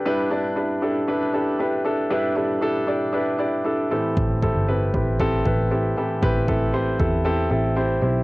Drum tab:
BD |--------|--------|oo-ooo--|oo-o----|